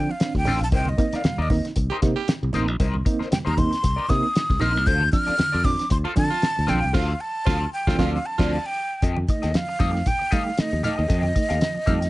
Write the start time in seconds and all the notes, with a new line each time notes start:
Already playing: F3 C4 D4 G5
0.09 F5, muted clean electric guitar stroke
0.20 C4 D4, muted clean electric guitar stroke, snare, closed hi-hat
0.35 D2 D3 G5, muted clean electric guitar stroke, kick, snare
0.45 A1 C4 D4 F4 A4 C5, open hi-hat, low conga
0.61 A#1 A5, muted clean electric guitar stroke
0.71 C2 C3 G3 D#4 A#4 C5 G5, kick, closed hi-hat, muted conga
0.85 D#5, muted conga, high conga
0.98 A#3 C4 D#4, muted clean electric guitar stroke, kick, closed hi-hat
1.13 C4 D#4 A#4 D5 F5, muted fingered electric bass stroke, snare, closed hi-hat
1.24 C3 G3, muted fingered electric bass stroke, snare, closed hi-hat, muted conga, high conga
1.38 D#2 D#4 A#4 D5 D#5
1.50 A#3 C4 D#4, muted clean electric guitar stroke, kick, snare, open hi-hat, high conga, low conga
1.65 C4 D#4, muted clean electric guitar stroke, snare, closed hi-hat
1.76 C2, muted clean electric guitar stroke, kick, closed hi-hat, muted conga
1.90 D#4 G4 A#4 C5, muted conga
2.02 C3 A#3 C4 D#4, kick, snare, closed hi-hat, high conga
2.16 G4, muted clean electric guitar stroke
2.28 C4 D#4, muted clean electric guitar stroke, snare, closed hi-hat, muted conga
2.43 C2 C3 G3, muted clean electric guitar stroke
2.53 A1 A#3 C4 D#4 A#4 C5, snare, closed hi-hat, low conga
2.68 A#1, muted clean electric guitar stroke
2.80 C2 C3 G3 D#4 A#4 C5, kick, closed hi-hat, muted conga
2.94 high conga
3.05 A#3 C4 D#4, muted clean electric guitar stroke, kick, closed hi-hat
3.19 C4 D#4 A#4 C5, muted fingered electric bass stroke, snare
3.31 C3 G3 G5, muted clean electric guitar stroke, muted fingered electric bass stroke, snare, closed hi-hat, muted conga, high conga
3.45 D#2 D#4 A#4 C5 A#5
3.56 A#3 C4 D#4 C6, muted clean electric guitar stroke, kick, closed hi-hat, high conga, low conga
3.71 C4 D#4, muted clean electric guitar stroke, snare, closed hi-hat
3.83 C2, muted clean electric guitar stroke, kick, closed hi-hat, muted conga
3.96 D#4 A#4 D5, muted conga
4.08 C3 A#3 C4 D#4 D#6, muted clean electric guitar stroke, kick, snare, closed hi-hat, high conga
4.23 muted clean electric guitar stroke
4.35 C4 D#4, snare, closed hi-hat
4.50 C2 C3 G3, muted clean electric guitar stroke, kick, snare, muted conga
4.59 A#1 A#3 C4 D#4 A#4 C5 F6, closed hi-hat, low conga
4.76 C2, muted clean electric guitar stroke
4.86 D2 D3 F4 A4 C5 G6, kick, closed hi-hat, muted conga
5.00 high conga
5.12 F3 C4 D4 F6, muted clean electric guitar stroke, kick, closed hi-hat
5.27 C4 D4 F4 A4 D5, muted fingered electric bass stroke, snare, closed hi-hat
5.38 D3, muted clean electric guitar stroke, muted fingered electric bass stroke, snare, closed hi-hat, muted conga, high conga
5.52 F2 F4 A4 D5, muted conga
5.64 F3 C4 D4 D6, muted clean electric guitar stroke, kick, snare, open hi-hat, high conga, low conga
5.79 C4 D4, muted clean electric guitar stroke, snare, closed hi-hat
5.90 D2 C6, muted clean electric guitar stroke, kick, closed hi-hat, muted conga
6.04 F4 A4 C5, muted conga
6.16 D3 F3 C4 D4 A5, muted clean electric guitar stroke, kick, snare, closed hi-hat, high conga
6.30 F4, muted clean electric guitar stroke
6.42 C4 D4, muted clean electric guitar stroke, snare, closed hi-hat
6.56 D2 D3, muted clean electric guitar stroke
6.67 A#1 F3 C4 D4 F4 A4 C5 G5, snare, closed hi-hat, low conga
6.82 C2, muted clean electric guitar stroke
6.93 D2 F4 A4 C5 F5, kick, snare, crash
7.21 A5
7.45 D2 F4 A4 C5, kick, snare
7.73 G5
7.87 D2 F3 C4 D4 F4 A4 C5, kick, snare
7.98 D2 F3 C4 D4 F4 A4 D5 F5, kick, snare
8.14 F5
8.26 A5
8.38 D2 F3 C4 D4 F4 A4 D5, kick, snare, crash
8.51 A5
8.66 G5
9.02 F2 F3 G4 A4 D#5, kick, closed hi-hat
9.16 muted clean electric guitar stroke, muted conga, high conga
9.29 A3 D#4 D#5, muted clean electric guitar stroke, kick, closed hi-hat
9.42 D#2 G4 A4 D#5, snare, closed hi-hat
9.54 F3 F5, muted clean electric guitar stroke, snare, closed hi-hat, muted conga, high conga
9.69 muted clean electric guitar stroke
9.79 F2 G3 A3 D#4 G4 A4 D#5, kick, snare, closed hi-hat, high conga, low conga
9.93 A3 D#4, muted clean electric guitar stroke, snare
10.06 G5, kick, closed hi-hat, muted conga, low conga
10.19 muted clean electric guitar stroke, muted conga
10.31 G3 A3 D#4 G4 A4 D#5 F5, kick, snare, closed hi-hat, high conga
10.46 muted clean electric guitar stroke
10.57 A3 D#4 D#5, muted clean electric guitar stroke, muted fingered electric bass stroke, snare, closed hi-hat
10.72 D#2 F3, muted clean electric guitar stroke
10.83 A3 D#4 G4 A4 D#5 F5, snare, closed hi-hat, low conga
10.98 D#2 G4 A4 D#5
11.08 F2 F3 G4 A4 D#5, kick, closed hi-hat
11.23 muted clean electric guitar stroke, muted conga, high conga
11.35 A3 D#4, muted clean electric guitar stroke, kick, closed hi-hat
11.49 D#2 G4 A4 F5, snare, closed hi-hat
11.61 F3, muted clean electric guitar stroke, snare, closed hi-hat, muted conga, high conga
11.75 muted clean electric guitar stroke, muted conga
11.86 F2 G3 A3 D#4 G4 A4 F5, kick, closed hi-hat, high conga, low conga
12.01 A3 D#4, muted clean electric guitar stroke, snare, closed hi-hat